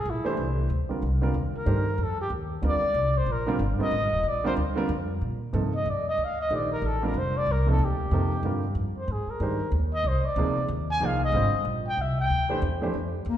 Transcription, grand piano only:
0.24 E3 A3 D4 G4 C5
0.89 D3 G3 C4 F4 A#4
1.21 D3 G3 C4 F4 A#4
1.65 D#3 A3 D4 G4 C5
2.62 D3 G3 C4 F4 A#4
3.46 D3 G3 C4 F4 A#4
3.78 D3 G3 C4 F4 A#4
4.44 D3 G3 C4 F4 A#4
4.76 D3 G3 C4 F4 A#4
5.53 C3 F3 A#3 D#4 A4
6.50 D#3 A3 D4 G4 C5
7.02 D3 G3 C4 F4 A#4
7.66 C3 F3 A#3 D#4 A4
8.12 C3 F3 A#3 D#4 A4
8.44 D3 G3 C4 F4 A#4
9.41 D#3 G#3 D4 G4 C5
10.37 C3 F3 A#3 D#4 G#4
11.01 F3 A#3 D#4 G#4 D5
11.34 D3 G3 C4 F4 C5
12.49 E3 A3 D4 G4 C5
12.81 F2 E3 A3 D4 G4 C5

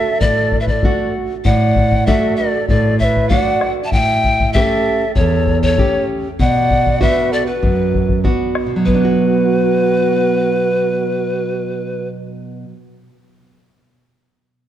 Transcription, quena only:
Already playing: A4
0.22 A4 B4
0.62 B4
0.67 B4
0.71 A4
1.46 D5
2.07 A4
2.39 A4
2.69 A4
3.00 B4 C#5
3.32 D5
3.85 E5
3.93 F#5
3.98 E5
4.56 B4
4.60 A4
5.19 A4
5.65 A4
6.41 D5
7.02 B4
7.32 A4
7.45 F#4 G4
8.86 F#4

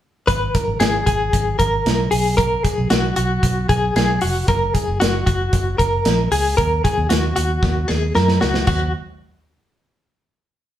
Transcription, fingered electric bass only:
0.29 G#1
0.68 G#1
0.80 G#1
1.07 G#1
1.34 G#1
1.60 G#1
1.86 B1
2.12 B1
2.78 B1
2.91 B1
3.18 B1
3.43 B1
3.70 B1
3.96 B1
4.23 F1
4.48 F#1
4.88 F#1
5.02 F#1
5.27 F#1
5.53 F#1
5.80 F#1
6.06 A#1
6.32 C#2
6.59 D#2
6.98 D#2
7.10 D#2
7.37 D#2
7.63 D#2
7.90 D#2
8.16 F#2
8.42 C#2
8.68 D#2

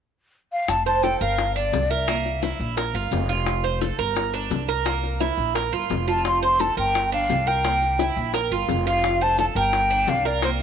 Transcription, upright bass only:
0.68 F1
1.21 G1
1.72 C2
2.59 A#1
2.94 G1
3.11 F1
3.98 G1
4.50 C2
5.37 A#1
5.73 G1
5.90 F1
6.77 G1
7.29 C2
8.16 A#1
8.51 G1
8.68 F1
9.55 G1
10.07 C2

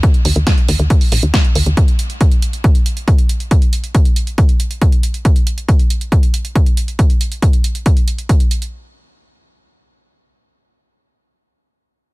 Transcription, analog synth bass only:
0.25 D#2
0.36 D#2
0.68 D#2
0.79 D#2
1.12 A#1
1.23 D#2
1.55 D#2
1.66 D#2

